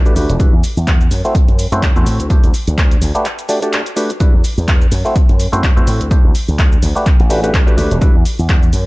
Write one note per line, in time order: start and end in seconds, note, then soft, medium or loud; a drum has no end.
0.05 0.14 A3 medium
0.05 0.14 D4 medium
0.05 0.14 F#4 medium
0.05 0.14 G4 medium
0.05 0.15 B4 loud
0.05 cabasa soft
0.16 0.26 D2 medium
0.16 0.36 A3 medium
0.16 0.36 D4 medium
0.16 0.36 F#4 medium
0.16 0.37 G4 medium
0.16 0.37 B4 medium
0.16 open hi-hat loud
0.16 cabasa medium
0.29 0.46 E1 medium
0.29 closed hi-hat medium
0.29 cabasa soft
0.39 0.53 G3 medium
0.39 0.54 D4 medium
0.39 0.54 E4 medium
0.39 0.54 F#4 medium
0.39 0.54 B4 medium
0.39 kick loud
0.39 closed hi-hat medium
0.39 cabasa soft
0.53 0.61 E2 medium
0.64 open hi-hat loud
0.64 cabasa medium
0.77 1.07 E2 medium
0.77 cabasa soft
0.87 kick medium
0.87 clap loud
0.87 closed hi-hat medium
0.87 cabasa soft
1.01 cabasa soft
1.11 1.21 F#2 medium
1.11 open hi-hat loud
1.11 cabasa medium
1.25 1.36 A3 medium
1.25 1.36 C4 medium
1.25 1.36 E4 medium
1.25 1.36 F#4 medium
1.25 1.36 C5 medium
1.25 cabasa soft
1.35 muted slap bass stroke soft
1.35 kick loud
1.35 closed hi-hat medium
1.35 cabasa soft
1.48 1.65 F#2 medium
1.48 closed hi-hat soft
1.59 open hi-hat loud
1.59 cabasa medium
1.72 1.89 F#2 medium
1.72 1.92 A3 medium
1.72 1.92 C4 medium
1.72 1.92 E4 medium
1.72 1.92 F#4 medium
1.72 1.92 C5 loud
1.72 closed hi-hat medium
1.72 cabasa soft
1.82 kick loud
1.82 clap loud
1.82 closed hi-hat medium
1.82 cabasa soft
1.96 2.04 E2 medium
1.96 2.28 A3 medium
1.96 2.28 C4 medium
1.96 2.28 E4 medium
1.96 2.28 F#4 medium
1.96 2.28 C5 medium
1.96 cabasa soft
2.06 2.20 A2 medium
2.06 open hi-hat loud
2.06 cabasa medium
2.20 2.37 D2 medium
2.20 closed hi-hat medium
2.20 cabasa soft
2.30 2.51 A3 medium
2.30 2.51 D4 medium
2.30 2.51 E4 medium
2.30 2.51 G4 medium
2.30 2.51 C5 medium
2.30 kick loud
2.30 closed hi-hat medium
2.30 cabasa soft
2.44 2.51 D2 medium
2.44 closed hi-hat soft
2.44 cabasa soft
2.54 open hi-hat medium
2.54 cabasa medium
2.67 2.97 D2 medium
2.67 closed hi-hat soft
2.67 cabasa soft
2.78 kick medium
2.78 clap loud
2.78 closed hi-hat medium
2.78 cabasa soft
2.91 closed hi-hat soft
2.91 cabasa soft
3.01 3.11 D2 medium
3.01 open hi-hat loud
3.01 cabasa medium
3.15 3.26 A3 medium
3.15 3.26 D4 medium
3.15 3.26 F#4 medium
3.15 3.26 G4 medium
3.15 3.26 B4 medium
3.15 closed hi-hat soft
3.15 cabasa soft
3.25 clap medium
3.25 closed hi-hat medium
3.25 cabasa soft
3.39 closed hi-hat soft
3.39 cabasa soft
3.49 3.59 A3 medium
3.49 3.59 D4 medium
3.49 3.59 F#4 medium
3.49 3.59 G4 medium
3.49 3.60 D5 medium
3.49 open hi-hat loud
3.49 cabasa medium
3.62 3.82 A3 medium
3.62 3.82 D4 medium
3.62 3.82 F#4 medium
3.62 3.82 G4 medium
3.62 3.82 D5 medium
3.62 closed hi-hat medium
3.62 cabasa soft
3.73 clap loud
3.73 closed hi-hat medium
3.73 cabasa soft
3.86 closed hi-hat soft
3.86 cabasa soft
3.96 4.10 A3 medium
3.96 4.11 D4 medium
3.96 4.11 F#4 medium
3.96 4.11 G4 medium
3.96 4.11 B4 medium
3.96 open hi-hat medium
3.96 cabasa medium
4.10 closed hi-hat medium
4.10 cabasa soft
4.20 4.34 G3 medium
4.20 4.34 D4 medium
4.20 4.35 E4 medium
4.20 4.35 F#4 medium
4.20 4.35 B4 medium
4.20 kick loud
4.20 closed hi-hat medium
4.20 cabasa soft
4.34 4.42 E2 medium
4.44 open hi-hat medium
4.44 cabasa medium
4.58 4.88 E2 medium
4.58 cabasa soft
4.68 kick loud
4.68 clap loud
4.68 closed hi-hat medium
4.68 cabasa soft
4.81 cabasa soft
4.92 5.02 F#2 medium
4.92 open hi-hat loud
4.92 cabasa medium
5.05 5.16 A3 medium
5.05 5.16 C4 medium
5.05 5.16 E4 medium
5.05 5.17 F#4 medium
5.05 5.17 C5 medium
5.05 cabasa soft
5.16 muted slap bass stroke soft
5.16 kick loud
5.16 closed hi-hat medium
5.16 cabasa soft
5.29 5.46 F#2 medium
5.29 closed hi-hat soft
5.40 open hi-hat loud
5.40 cabasa medium
5.52 5.70 F#2 medium
5.52 5.72 A3 medium
5.52 5.72 C4 medium
5.52 5.72 E4 medium
5.52 5.73 F#4 medium
5.52 5.73 C5 loud
5.52 closed hi-hat medium
5.52 cabasa soft
5.63 kick loud
5.63 clap loud
5.63 closed hi-hat medium
5.63 cabasa soft
5.76 5.85 E2 medium
5.76 6.08 A3 medium
5.76 6.08 C4 medium
5.76 6.08 E4 medium
5.76 6.09 F#4 medium
5.76 6.09 C5 medium
5.76 cabasa soft
5.87 6.01 A2 medium
5.87 open hi-hat loud
5.87 cabasa medium
6.01 6.18 D2 medium
6.01 closed hi-hat medium
6.01 cabasa soft
6.11 6.31 A3 medium
6.11 6.32 D4 medium
6.11 6.32 E4 medium
6.11 6.32 G4 medium
6.11 6.32 C5 medium
6.11 kick loud
6.11 closed hi-hat medium
6.11 cabasa soft
6.25 6.32 D2 medium
6.35 open hi-hat loud
6.35 cabasa medium
6.48 6.78 D2 medium
6.48 cabasa soft
6.59 kick loud
6.59 clap loud
6.59 closed hi-hat medium
6.59 cabasa soft
6.72 cabasa soft
6.82 6.92 D2 medium
6.82 open hi-hat loud
6.82 cabasa medium
6.95 7.07 A3 medium
6.95 7.07 D4 medium
6.95 7.07 F#4 medium
6.95 7.07 G4 medium
6.95 7.07 B4 medium
6.95 cabasa soft
7.06 kick loud
7.06 clap medium
7.06 closed hi-hat medium
7.06 cabasa soft
7.20 7.50 A1 medium
7.20 closed hi-hat soft
7.30 7.40 A3 medium
7.30 7.40 D4 medium
7.30 7.40 F#4 medium
7.30 7.40 G4 medium
7.30 7.41 B4 loud
7.30 open hi-hat loud
7.30 cabasa medium
7.43 7.63 A3 medium
7.43 7.63 D4 medium
7.43 7.63 F#4 medium
7.43 7.63 G4 medium
7.43 7.63 B4 medium
7.43 closed hi-hat medium
7.43 cabasa soft
7.54 7.64 D2 medium
7.54 kick loud
7.54 clap loud
7.54 closed hi-hat medium
7.54 cabasa soft
7.67 7.76 A3 medium
7.67 7.76 D4 medium
7.67 7.76 F#4 medium
7.67 7.76 G4 medium
7.67 7.76 B4 loud
7.67 cabasa soft
7.77 7.88 D2 medium
7.77 7.98 A3 medium
7.77 7.98 D4 medium
7.77 7.98 F#4 medium
7.77 7.98 G4 medium
7.77 7.98 B4 medium
7.77 open hi-hat loud
7.77 cabasa medium
7.91 8.08 E1 medium
7.91 closed hi-hat medium
7.91 cabasa soft
8.01 8.15 G3 medium
8.01 8.15 D4 medium
8.01 8.16 E4 medium
8.01 8.16 F#4 medium
8.01 8.16 B4 medium
8.01 kick loud
8.01 closed hi-hat medium
8.01 cabasa soft
8.15 8.23 E2 medium
8.25 open hi-hat loud
8.25 cabasa medium
8.39 8.69 E2 medium
8.39 cabasa soft
8.49 kick loud
8.49 clap loud
8.49 closed hi-hat medium
8.49 cabasa soft
8.63 cabasa soft
8.73 8.83 F#2 medium
8.73 open hi-hat loud
8.73 cabasa medium